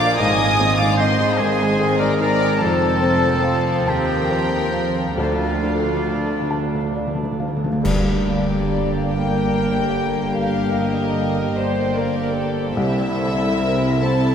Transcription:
0.00 0.16 A#2 medium
0.00 0.14 F3 medium
0.00 0.20 F3 medium
0.00 0.23 A#3 medium
0.00 0.14 D4 medium
0.00 0.20 F4 medium
0.00 0.23 A#4 medium
0.00 0.19 D5 loud
0.00 0.21 D5 loud
0.00 0.23 D5 medium
0.00 0.19 F5 medium
0.00 0.23 F5 medium
0.00 0.19 D6 loud
0.17 1.26 G#1 medium
0.17 1.25 G#2 medium
0.17 2.57 G#2 medium
0.17 0.39 D#3 medium
0.17 2.57 G#3 medium
0.17 5.02 C4 medium
0.17 0.38 C4 medium
0.17 0.80 D#5 loud
0.17 0.82 D#5 loud
0.17 0.77 G#5 medium
0.17 0.78 D#6 loud
0.41 0.60 G#3 medium
0.41 0.60 D#4 medium
0.59 0.80 D#3 medium
0.59 1.24 C4 medium
0.59 0.80 C4 medium
0.77 1.00 D#4 medium
0.77 0.97 D5 medium
0.77 1.03 D5 medium
0.77 0.98 F5 medium
0.77 1.00 D6 loud
0.81 1.00 G#3 medium
0.97 1.19 D#3 medium
0.97 1.19 C4 medium
0.97 1.40 C5 medium
0.97 1.39 D#5 medium
0.97 1.64 D#5 medium
0.97 1.37 C6 loud
1.01 1.43 C5 medium
1.20 1.40 G#3 medium
1.20 1.40 D#4 medium
1.38 2.47 G#1 medium
1.38 2.46 G#2 medium
1.38 1.60 D#3 medium
1.38 1.60 C4 medium
1.38 1.98 G#4 medium
1.38 2.02 G#4 medium
1.38 1.99 C5 loud
1.38 1.99 G#5 loud
1.38 2.03 G#5 medium
1.60 1.80 G#3 medium
1.60 1.80 D#4 medium
1.80 1.99 D#3 medium
1.80 1.99 C4 medium
1.80 2.45 C5 medium
1.99 2.20 G#3 medium
1.99 2.20 D#4 medium
1.99 2.19 A#4 medium
1.99 2.20 A#4 medium
1.99 2.19 D5 medium
1.99 2.18 A#5 medium
2.19 2.41 D#3 medium
2.19 2.42 C4 medium
2.19 2.61 D#4 medium
2.19 2.63 A#4 medium
2.19 2.60 D5 medium
2.19 2.60 A#5 loud
2.42 2.62 G#3 medium
2.42 2.62 D#4 medium
2.60 3.84 F1 medium
2.60 3.83 F2 medium
2.60 3.84 F2 medium
2.60 7.46 F3 medium
2.60 5.16 F3 medium
2.60 5.15 C4 medium
2.60 3.91 A4 medium
2.60 3.87 C5 medium
2.60 3.87 A5 medium
3.02 3.70 C4 medium
3.44 4.12 F5 medium
3.86 5.19 D#2 medium
3.86 4.89 G4 medium
3.86 5.18 A#4 medium
3.86 5.19 G5 medium
3.86 4.56 A5 medium
4.30 5.00 C5 soft
4.73 5.18 F5 soft
5.17 7.80 D2 medium
5.17 7.59 D2 medium
5.17 7.59 A3 medium
5.17 7.46 D4 medium
5.17 7.59 D4 medium
5.17 6.49 F4 medium
5.17 6.48 A4 medium
5.17 6.49 F5 medium
5.53 5.60 D3 soft
5.63 6.34 D4 soft
5.69 5.76 D3 soft
5.77 5.84 D3 soft
5.85 5.92 D3 soft
5.93 6.00 D3 soft
6.01 6.09 D3 medium
6.07 6.16 D3 soft
6.07 6.78 F5 soft
6.17 6.24 D3 soft
6.25 6.32 D3 soft
6.33 6.41 D3 medium
6.42 6.49 D3 medium
6.50 6.57 D3 medium
6.50 7.22 A5 soft
6.58 6.65 D3 medium
6.67 6.73 D3 medium
6.74 6.81 D3 medium
6.82 6.89 D3 medium
6.91 6.98 D3 medium
6.95 7.06 D3 medium
6.95 7.67 D5 medium
7.07 7.14 D3 medium
7.15 7.22 D3 medium
7.23 7.30 D3 medium
7.32 7.39 D3 medium
7.40 7.47 D3 medium
7.40 7.84 F5 soft
7.48 7.55 D3 loud
7.57 7.63 D3 loud
7.64 7.71 D3 loud
7.73 7.79 D3 loud
7.84 12.72 G1 medium
7.84 10.33 G2 medium
7.84 12.72 G2 medium
7.84 12.73 D3 medium
7.84 12.72 A#3 medium
7.84 12.73 A#3 medium
7.84 12.72 G4 medium
7.84 9.11 D5 medium
7.84 concert bass drum medium
7.84 crash medium
9.15 12.76 A#3 medium
9.15 10.34 A#4 medium
9.15 10.38 G5 medium
10.38 11.55 A#4 medium
10.38 10.77 F5 medium
10.77 11.57 D#5 medium
11.58 11.97 C5 medium
11.58 12.76 D5 medium
11.98 12.37 A#4 medium
12.37 12.76 A4 medium
12.76 14.35 C2 medium
12.76 14.35 C3 medium
12.76 14.35 C4 medium
12.76 14.35 E4 medium
12.76 13.18 G4 medium
12.76 13.98 E5 loud
13.18 13.59 A4 medium
13.61 14.02 A#4 medium
14.01 14.35 C4 soft
14.01 14.35 A4 medium
14.01 14.35 A5 loud

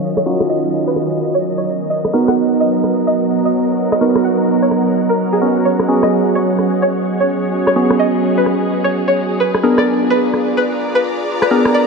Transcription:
0.00 1.63 D#3 medium
0.00 2.29 F#3 medium
0.00 9.36 F#3 medium
0.00 0.24 C#4 medium
0.00 2.37 C#4 medium
0.00 0.24 D#4 medium
0.00 0.24 F4 medium
0.00 0.24 F#4 loud
0.00 5.38 A#4 medium
0.00 6.46 D#5 medium
0.00 9.36 D#5 medium
0.00 1.63 F5 medium
0.00 1.66 F5 medium
0.17 0.38 C#5 medium
0.17 cross-stick medium
0.26 1.65 C#4 medium
0.26 1.65 D#4 medium
0.26 1.65 F4 medium
0.26 1.65 F#4 loud
0.40 cross-stick medium
0.49 0.71 D#5 medium
0.73 tambourine medium
0.87 0.99 B4 medium
0.96 cross-stick soft
1.34 1.46 C#5 medium
1.58 1.79 C#5 medium
1.66 5.38 B3 medium
1.66 5.38 C#5 medium
1.66 tambourine medium
1.81 tambourine soft
1.86 9.40 F#5 medium
1.90 2.12 D#5 medium
2.04 6.35 A#4 medium
2.04 cross-stick medium
2.13 3.99 B3 medium
2.13 3.99 D#4 medium
2.13 3.99 F#4 medium
2.13 3.99 A#4 loud
2.28 2.49 F#5 medium
2.28 cross-stick medium
2.60 2.90 D#5 medium
2.60 tambourine medium
2.84 cross-stick soft
3.07 3.29 D#5 medium
3.07 tambourine medium
3.45 3.72 D#5 medium
3.54 tambourine medium
3.92 4.13 D#5 medium
3.92 cross-stick soft
4.01 5.40 B3 medium
4.01 5.40 D#4 medium
4.01 5.40 F#4 medium
4.01 5.40 A#4 loud
4.15 cross-stick medium
4.24 4.46 F#5 medium
4.48 tambourine medium
4.62 4.74 C#5 medium
4.71 cross-stick soft
4.95 tambourine medium
5.09 5.21 A#4 medium
5.33 5.54 G#4 medium
5.41 5.86 B3 medium
5.41 9.36 C#4 medium
5.41 5.86 C#4 medium
5.41 5.86 F#4 medium
5.41 11.87 G#4 medium
5.41 5.86 A#4 medium
5.41 tambourine medium
5.56 11.87 G#4 medium
5.56 tambourine soft
5.65 5.87 C#5 medium
5.79 cross-stick soft
5.88 7.74 B3 medium
5.88 7.74 C#4 medium
5.88 7.74 F#4 medium
5.88 7.74 G#4 loud
5.88 tambourine medium
6.03 6.24 D#5 medium
6.03 cross-stick medium
6.35 9.40 C#5 medium
6.35 6.65 C#5 medium
6.35 tambourine medium
6.59 cross-stick soft
6.82 7.04 C#5 medium
6.82 tambourine medium
6.97 tambourine soft
7.20 7.47 C#5 medium
7.29 tambourine medium
7.44 tambourine soft
7.67 7.88 C#5 medium
7.67 cross-stick soft
7.76 9.39 B3 medium
7.76 9.39 C#4 medium
7.76 9.39 F#4 medium
7.76 9.39 G#4 loud
7.76 tambourine medium
7.90 cross-stick medium
7.90 tambourine soft
7.99 8.21 D#5 medium
8.23 tambourine medium
8.37 8.49 B4 medium
8.37 tambourine soft
8.46 cross-stick soft
8.70 tambourine medium
8.84 8.96 C#5 medium
8.84 tambourine soft
8.93 tambourine soft
9.08 9.29 C#5 medium
9.16 tambourine medium
9.31 tambourine soft
9.40 11.87 F4 medium
9.40 9.62 B4 loud
9.40 11.87 D5 medium
9.54 cross-stick medium
9.63 11.49 B3 medium
9.63 11.49 D4 medium
9.63 11.49 G#4 medium
9.63 11.49 A#4 loud
9.63 tambourine medium
9.78 9.99 D5 medium
9.78 cross-stick medium
9.78 tambourine soft
9.87 tambourine soft
10.10 10.40 B4 medium
10.10 11.87 D5 medium
10.10 tambourine medium
10.25 tambourine soft
10.34 cross-stick soft
10.34 tambourine soft
10.49 11.87 A#5 medium
10.57 10.79 B4 medium
10.57 tambourine medium
10.72 tambourine soft
10.81 tambourine soft
10.95 11.22 B4 medium
11.04 tambourine medium
11.19 tambourine soft
11.27 tambourine soft
11.42 11.63 B4 medium
11.42 cross-stick medium
11.51 11.87 B3 loud
11.51 11.87 D4 medium
11.51 11.87 G#4 medium
11.51 11.87 A#4 loud
11.51 tambourine medium
11.65 cross-stick medium
11.65 tambourine soft
11.74 11.87 D5 medium
11.74 tambourine soft

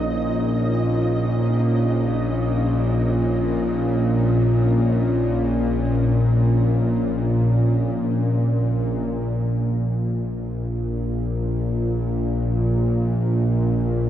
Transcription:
0.00 9.06 A#1 medium
0.00 9.05 A#2 medium
0.00 9.07 A#3 medium
0.00 9.06 C#4 medium
0.00 9.08 D#4 medium
0.00 9.07 F4 medium
0.00 9.06 C#5 medium
0.00 9.08 D#5 medium
9.06 14.10 A#1 medium
9.06 14.10 A#2 medium

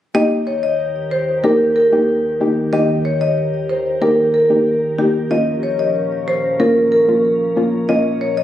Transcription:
0.15 5.27 D#2 medium
0.15 5.27 D#3 medium
0.15 0.74 A#3 medium
0.15 0.74 D#4 medium
0.15 5.27 G4 medium
0.15 0.74 G4 loud
0.15 8.43 A#4 medium
0.15 0.26 D#5 loud
0.47 0.58 C#5 medium
0.63 0.74 D#5 medium
1.11 1.23 C5 medium
1.44 1.88 A#3 medium
1.44 1.88 D#4 medium
1.44 1.89 G4 loud
1.44 1.55 A#4 medium
1.76 1.87 A#4 medium
1.92 2.37 A#3 medium
1.92 2.37 D#4 medium
1.92 2.37 G4 medium
2.40 2.70 A#3 medium
2.40 2.70 D#4 medium
2.40 2.70 G4 medium
2.73 3.32 A#3 medium
2.73 3.32 D#4 medium
2.73 3.32 G4 loud
2.73 2.84 D#5 loud
3.05 3.16 C#5 medium
3.21 3.32 D#5 medium
3.69 3.81 C5 medium
4.01 4.46 A#3 medium
4.01 4.46 D#4 medium
4.01 4.46 G4 loud
4.01 4.13 A#4 medium
4.34 4.45 A#4 medium
4.50 4.68 A#3 medium
4.50 4.68 D#4 medium
4.50 4.68 G4 medium
4.98 5.16 A#3 medium
4.98 5.16 D#4 medium
4.98 5.10 G4 medium
4.98 5.16 G4 medium
5.31 8.43 A#2 medium
5.31 8.43 F3 medium
5.31 5.90 A#3 medium
5.31 5.90 C#4 medium
5.31 8.43 C#4 medium
5.31 5.90 F4 loud
5.31 5.42 D#5 loud
5.63 5.74 C#5 medium
5.79 5.90 D#5 medium
6.28 6.39 C5 medium
6.60 7.04 A#3 medium
6.60 7.04 C#4 medium
6.60 7.05 F4 loud
6.60 6.71 A#4 medium
6.92 7.03 A#4 medium
7.08 7.53 A#3 medium
7.08 7.53 C#4 medium
7.08 7.53 F4 medium
7.56 7.86 A#3 medium
7.56 7.86 C#4 medium
7.56 7.87 F4 medium
7.89 8.43 A#3 medium
7.89 8.43 C#4 medium
7.89 8.43 F4 loud
7.89 8.00 D#5 loud
8.21 8.32 C#5 medium
8.37 8.43 D#5 medium

